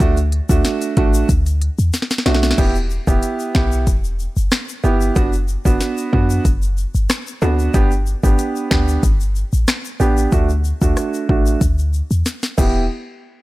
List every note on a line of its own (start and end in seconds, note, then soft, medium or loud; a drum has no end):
0.00 0.41 D2 loud
0.00 0.15 A3 loud
0.00 0.16 D4 medium
0.00 0.16 F#4 loud
0.00 kick loud
0.00 closed hi-hat medium
0.00 shaker medium
0.17 closed hi-hat medium
0.17 shaker medium
0.32 closed hi-hat medium
0.49 0.62 D2 loud
0.49 0.93 A3 medium
0.49 0.93 D4 medium
0.49 0.93 F#4 medium
0.49 kick loud
0.49 shaker medium
0.65 snare medium
0.65 closed hi-hat medium
0.65 shaker medium
0.82 closed hi-hat medium
0.82 shaker medium
0.97 1.24 A1 loud
0.97 1.27 A3 medium
0.97 1.27 D4 medium
0.97 1.27 F#4 medium
0.97 kick loud
0.97 closed hi-hat medium
1.14 shaker medium
1.29 1.70 D2 loud
1.29 kick medium
1.29 closed hi-hat medium
1.29 shaker medium
1.46 closed hi-hat soft
1.46 shaker medium
1.62 closed hi-hat medium
1.79 1.91 E2 medium
1.79 shaker medium
1.94 snare medium
1.94 closed hi-hat medium
1.94 shaker medium
2.02 snare medium
2.11 snare medium
2.11 shaker medium
2.18 snare medium
2.26 2.53 B1 medium
2.26 2.56 A3 medium
2.26 2.56 D4 medium
2.26 2.56 F#4 medium
2.26 snare loud
2.26 closed hi-hat medium
2.26 high timbale medium
2.35 snare medium
2.43 snare loud
2.43 shaker medium
2.51 snare loud
2.58 2.99 E1 loud
2.58 2.73 B3 medium
2.58 2.74 E4 medium
2.58 2.74 G4 loud
2.58 kick loud
2.58 closed hi-hat medium
2.58 crash loud
2.58 shaker medium
2.75 shaker medium
2.90 shaker medium
3.07 3.20 E1 loud
3.07 3.51 B3 medium
3.07 3.51 E4 medium
3.07 3.52 G4 medium
3.07 kick medium
3.07 shaker medium
3.23 closed hi-hat medium
3.23 shaker medium
3.40 shaker medium
3.55 3.88 B1 loud
3.55 3.85 B3 medium
3.55 3.85 E4 medium
3.55 3.85 G4 medium
3.55 finger snap medium
3.55 kick medium
3.55 snare loud
3.72 shaker medium
3.87 4.28 E1 loud
3.87 kick medium
3.87 closed hi-hat medium
3.87 shaker medium
4.04 shaker soft
4.19 shaker soft
4.37 4.49 F#1 medium
4.37 shaker medium
4.52 finger snap medium
4.52 cross-stick medium
4.52 snare loud
4.52 closed hi-hat medium
4.52 shaker medium
4.69 shaker medium
4.84 5.11 G1 loud
4.84 5.14 B3 medium
4.84 5.14 E4 medium
4.84 5.14 G4 medium
4.84 shaker medium
5.01 shaker medium
5.16 5.57 F#1 loud
5.16 5.31 B3 medium
5.16 5.32 D4 medium
5.16 5.32 F#4 loud
5.16 kick loud
5.16 closed hi-hat medium
5.16 shaker medium
5.33 shaker medium
5.48 shaker medium
5.65 5.78 F#1 loud
5.65 6.09 B3 medium
5.65 6.09 D4 medium
5.65 6.10 F#4 medium
5.65 kick medium
5.65 shaker medium
5.81 snare medium
5.81 closed hi-hat medium
5.81 shaker medium
5.98 shaker medium
6.13 6.40 F#2 loud
6.13 6.43 B3 medium
6.13 6.43 D4 medium
6.13 6.43 F#4 medium
6.13 kick loud
6.30 shaker medium
6.45 6.86 F#1 loud
6.45 kick medium
6.45 closed hi-hat medium
6.45 shaker medium
6.62 shaker soft
6.78 shaker soft
6.95 7.07 G1 medium
6.95 shaker medium
7.10 finger snap medium
7.10 cross-stick medium
7.10 snare loud
7.10 closed hi-hat medium
7.10 shaker medium
7.27 shaker medium
7.42 7.69 D2 loud
7.42 7.72 B3 medium
7.42 7.72 D4 medium
7.42 7.72 F#4 medium
7.42 high timbale medium
7.42 shaker medium
7.59 shaker medium
7.74 8.15 G1 loud
7.74 7.90 B3 medium
7.74 7.90 D4 medium
7.74 7.90 G4 loud
7.74 kick loud
7.74 closed hi-hat medium
7.74 shaker medium
7.91 shaker medium
8.06 shaker medium
8.23 8.36 G1 loud
8.23 8.67 B3 medium
8.23 8.67 D4 medium
8.23 8.68 G4 medium
8.23 kick loud
8.23 shaker medium
8.39 closed hi-hat medium
8.39 shaker medium
8.56 shaker medium
8.71 8.98 D2 medium
8.71 9.01 B3 medium
8.71 9.01 D4 medium
8.71 9.01 G4 medium
8.71 finger snap medium
8.71 kick loud
8.71 snare loud
8.88 shaker medium
9.03 9.44 G1 loud
9.03 kick medium
9.03 closed hi-hat medium
9.03 shaker medium
9.21 shaker soft
9.36 shaker soft
9.53 9.65 A1 medium
9.53 shaker medium
9.68 finger snap medium
9.68 cross-stick medium
9.68 snare loud
9.68 closed hi-hat medium
9.68 shaker medium
9.85 shaker medium
10.00 10.27 A1 medium
10.00 10.30 B3 medium
10.00 10.30 D4 medium
10.00 10.30 G4 medium
10.00 shaker medium
10.17 shaker medium
10.32 10.73 D2 loud
10.32 10.48 A3 medium
10.32 10.48 D4 medium
10.32 10.48 F#4 loud
10.32 kick loud
10.32 closed hi-hat medium
10.32 shaker medium
10.49 shaker soft
10.65 shaker medium
10.81 10.94 D2 loud
10.81 11.25 A3 medium
10.81 11.26 D4 medium
10.81 11.26 F#4 medium
10.81 kick loud
10.81 shaker medium
10.97 cross-stick medium
10.97 closed hi-hat medium
10.97 shaker medium
11.14 shaker medium
11.29 11.56 A1 loud
11.29 11.59 A3 medium
11.29 11.59 D4 medium
11.29 11.59 F#4 medium
11.29 kick loud
11.46 shaker medium
11.61 12.02 D2 loud
11.61 kick medium
11.61 closed hi-hat medium
11.61 shaker medium
11.79 shaker soft
11.94 shaker soft
12.11 12.23 E2 medium
12.11 shaker medium
12.26 snare medium
12.26 closed hi-hat medium
12.26 shaker medium
12.43 snare medium
12.43 shaker medium
12.58 12.88 E1 loud
12.58 12.82 B3 medium
12.58 12.83 E4 medium
12.58 12.83 G4 loud
12.58 kick loud
12.58 crash medium
12.58 shaker medium